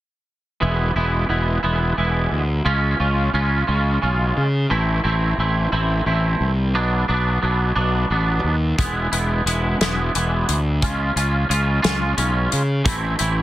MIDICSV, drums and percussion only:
0, 0, Header, 1, 2, 480
1, 0, Start_track
1, 0, Tempo, 680272
1, 435, Time_signature, 6, 3, 24, 8
1, 9471, End_track
2, 0, Start_track
2, 0, Title_t, "Drums"
2, 6199, Note_on_c, 9, 36, 98
2, 6200, Note_on_c, 9, 42, 75
2, 6269, Note_off_c, 9, 36, 0
2, 6271, Note_off_c, 9, 42, 0
2, 6440, Note_on_c, 9, 42, 47
2, 6511, Note_off_c, 9, 42, 0
2, 6683, Note_on_c, 9, 42, 54
2, 6754, Note_off_c, 9, 42, 0
2, 6922, Note_on_c, 9, 42, 67
2, 6925, Note_on_c, 9, 38, 90
2, 6992, Note_off_c, 9, 42, 0
2, 6995, Note_off_c, 9, 38, 0
2, 7163, Note_on_c, 9, 42, 49
2, 7233, Note_off_c, 9, 42, 0
2, 7400, Note_on_c, 9, 42, 53
2, 7471, Note_off_c, 9, 42, 0
2, 7637, Note_on_c, 9, 42, 72
2, 7638, Note_on_c, 9, 36, 92
2, 7708, Note_off_c, 9, 36, 0
2, 7708, Note_off_c, 9, 42, 0
2, 7881, Note_on_c, 9, 42, 48
2, 7952, Note_off_c, 9, 42, 0
2, 8121, Note_on_c, 9, 42, 50
2, 8191, Note_off_c, 9, 42, 0
2, 8356, Note_on_c, 9, 42, 67
2, 8359, Note_on_c, 9, 38, 96
2, 8427, Note_off_c, 9, 42, 0
2, 8430, Note_off_c, 9, 38, 0
2, 8594, Note_on_c, 9, 42, 52
2, 8664, Note_off_c, 9, 42, 0
2, 8834, Note_on_c, 9, 42, 52
2, 8905, Note_off_c, 9, 42, 0
2, 9071, Note_on_c, 9, 36, 97
2, 9072, Note_on_c, 9, 42, 73
2, 9142, Note_off_c, 9, 36, 0
2, 9143, Note_off_c, 9, 42, 0
2, 9306, Note_on_c, 9, 42, 53
2, 9377, Note_off_c, 9, 42, 0
2, 9471, End_track
0, 0, End_of_file